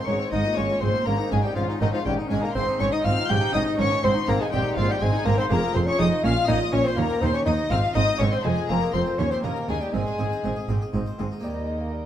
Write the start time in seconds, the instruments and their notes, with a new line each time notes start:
0.07 double bass section G#1, cello section G#2, harpsichord G#2 G#3, bassoon C#4, viola section D#4, violin section C#5 C#6
0.20 viola section C4, harpsichord C4
0.32 double bass section G#1, cello section G#2, harpsichord G#2, viola section G#3, bassoon D#4, violin section D#5 D#6
0.45 viola section A#3, harpsichord F4
0.57 double bass section G#1, cello section G#2, harpsichord G#2 A#3, viola section G#3, bassoon C#4, violin section C#5 C#6
0.70 viola section A#3, harpsichord F4
0.81 double bass section G#1, cello section G#2, harpsichord G#2, viola section G#3, bassoon C4, violin section C5 C6
0.94 viola section A#3, harpsichord A#3
1.06 double bass section G#1, cello section G#2, harpsichord G#2, bassoon A#3, viola section C#4, violin section A#4 A#5
1.19 harpsichord D#4, viola section D#4
1.31 double bass section G#1, cello section G#2, harpsichord G#2 C#4, bassoon G#3, viola section C#4, violin section G#4 G#5
1.44 bassoon G3, viola section D#4, harpsichord D#4, violin section G4 G5
1.55 double bass section G#1, cello section G#2, harpsichord G#2, bassoon F3, viola section C#4, violin section F4 F5
1.69 harpsichord C#4, viola section D#4
1.81 double bass section G#1, cello section G#2, harpsichord G#2 C4, bassoon D#3, viola section C#4, violin section D#4 D#5
1.94 bassoon F3, harpsichord C#4, viola section D#4, violin section F4 F5
2.05 double bass section G#1, cello section G#2, harpsichord G#2, bassoon G3, viola section C#4, violin section G4 G5
2.18 viola section D#4, harpsichord D#4
2.30 double bass section G#1, cello section G#2, harpsichord G#2 C#4, bassoon G#3, viola section C#4, violin section G#4 G#5
2.42 bassoon A#3, viola section D#4, violin section A#4 A#5
2.54 double bass section G#1, cello section G#2, harpsichord G#2, bassoon C4, viola section C4, violin section C5 C6
2.68 harpsichord D#4, viola section D#4
2.80 double bass section G#1, cello section G#2, harpsichord G#2 C4, viola section C4, bassoon C#4, violin section C#5 C#6
2.92 viola section D#4, bassoon D#4, harpsichord D#4, violin section D#5 D#6
3.04 double bass section G#1, cello section G#2, harpsichord G#2 G#3, viola section C4, bassoon F4, violin section F5 F6
3.17 harpsichord C4, viola section D#4
3.29 double bass section G#1, harpsichord G#2, cello section G#2, viola section C#4, bassoon G4, violin section G5 G6
3.41 harpsichord D#4, viola section D#4
3.53 double bass section G#1, harpsichord G#2 C#4, cello section G#2, viola section C#4, bassoon D#4, violin section D#5 D#6
3.66 harpsichord D#4, viola section D#4
3.78 double bass section G#1, cello section G#2, harpsichord G#2 A#3, bassoon C#4, viola section C#4, violin section C#5 C#6
3.91 harpsichord C#4, viola section D#4
4.03 double bass section G#1, harpsichord G#2, cello section G#2, bassoon C4, viola section C4, violin section C5 C6
4.16 harpsichord D#4, viola section D#4
4.27 double bass section G#1, cello section G#2, harpsichord G#2 C4, bassoon A#3, viola section C4, violin section A#4 A#5
4.39 bassoon G#3, viola section D#4, harpsichord D#4, violin section G#4 G#5
4.52 double bass section G#1, cello section G#2, harpsichord G#2 G#3, bassoon G3, viola section C4, violin section G4 G5
4.64 harpsichord C4, viola section D#4
4.76 double bass section G#1, cello section G#2, harpsichord G#2 A#3, bassoon F3, viola section C4, violin section F4 F5
4.89 bassoon G3, harpsichord C4, viola section D#4, violin section G4 G5
5.01 double bass section G#1, cello section G#2, harpsichord G#2 G#3, bassoon G#3, viola section C4, violin section G#4 G#5
5.13 viola section D#4, harpsichord D#4
5.25 double bass section G#1, cello section G#2, harpsichord G#2 C4, bassoon A#3, viola section C4, violin section A#4 A#5
5.38 harpsichord G#3, bassoon C4, viola section D#4, violin section C5 C6
5.50 double bass section F1, cello section F2, harpsichord F2, bassoon A#3, viola section G#4, violin section A#4 A#5
5.63 harpsichord G#4
5.74 double bass section F1, cello section F2, harpsichord F2 F4, bassoon C4, viola section G#4, violin section C5 C6
5.87 bassoon C#4, harpsichord G#4, violin section C#5 C#6
5.98 double bass section F1, harpsichord F2 C4, cello section F2, bassoon D#4, viola section G#4, violin section D#5 D#6
6.11 harpsichord F4
6.23 double bass section A#1, harpsichord A#2, cello section A#2, viola section C#4, bassoon F4, violin section F5 F6
6.36 harpsichord F4
6.48 double bass section A#1, harpsichord A#2 C#4, cello section A#2, viola section C#4, bassoon D#4, violin section D#5 D#6
6.61 harpsichord F4
6.73 double bass section A#1, cello section A#2, harpsichord A#2, viola section C#4, bassoon C#4, violin section C#5 C#6
6.85 bassoon C4, harpsichord C#4, violin section C5 C6
6.96 harpsichord D#2, cello section D#2, double bass section D#2, bassoon A#3, viola section D#4, violin section A#4 A#5
7.10 harpsichord G4
7.21 harpsichord D#2 D#4, cello section D#2, double bass section D#2, bassoon C4, viola section D#4, violin section C5 C6
7.33 bassoon C#4, harpsichord G4, violin section C#5 C#6
7.45 harpsichord D#2 A#3, cello section D#2, double bass section D#2, bassoon D#4, viola section D#4, violin section D#5 D#6
7.57 harpsichord D#4
7.70 double bass section G#1, cello section G#2, harpsichord G#2, viola section C4, bassoon F4, violin section F5 F6
7.82 harpsichord D#4
7.94 double bass section G#1, harpsichord G#2 C4, cello section G#2, viola section C4, bassoon D#4, violin section D#5 D#6
8.07 harpsichord D#4
8.19 double bass section G#1, harpsichord G#2 G#3, cello section G#2, viola section C4, bassoon C#4, violin section C#5 C#6
8.31 harpsichord C4, bassoon C4, violin section C5 C6
8.44 double bass section F1, harpsichord F2, cello section F2, bassoon G#3, viola section C4, violin section G#4 G#5
8.56 harpsichord G#4
8.68 double bass section F1, harpsichord F2 F4, cello section F2, bassoon A#3, viola section C4, violin section A#4 A#5
8.81 harpsichord G#4
8.93 double bass section F1, harpsichord F2 C4, cello section F2, viola section C4, bassoon C4, violin section C5 C6
9.06 harpsichord F4
9.19 cello section D#2, harpsichord D#2, double bass section D#2, viola section C#4, bassoon C#4, violin section C#5 C#6
9.31 bassoon C4, harpsichord G4, violin section C5 C6
9.43 harpsichord D#2 D#4, cello section D#2, double bass section D#2, bassoon A#3, viola section C#4, violin section A#4 A#5
9.56 harpsichord G4
9.68 harpsichord D#2 C#4, cello section D#2, double bass section D#2, bassoon G#3, viola section C#4, violin section G#4 G#5
9.81 bassoon G3, harpsichord D#4, violin section G4 G5
9.92 double bass section G#1, cello section G#2, harpsichord G#2 G#3, bassoon G#3, viola section C4, violin section G#4 G#5
10.07 harpsichord C5
10.18 double bass section G#1, cello section G#2, harpsichord G#2 G#4, viola section C4
10.32 harpsichord C5
10.44 double bass section G#1, cello section G#2, harpsichord G#2 D#4, viola section C4
10.56 harpsichord G#4
10.68 double bass section G#1, cello section G#2, harpsichord G#2 G4, viola section C4
10.82 harpsichord G#4
10.93 double bass section G#1, cello section G#2, harpsichord G#2 D#4, viola section C4
11.06 harpsichord C5
11.18 double bass section G#1, cello section G#2, harpsichord G#2 G#4, viola section C4
11.31 harpsichord D#4
11.39 cello section D#2, harpsichord A#3 D#4 G4
11.43 harpsichord D#2, double bass section D#2, bassoon G3, viola section A#4, violin section D#5 G5
11.68 bassoon G#3
11.81 bassoon A#3
11.93 bassoon G3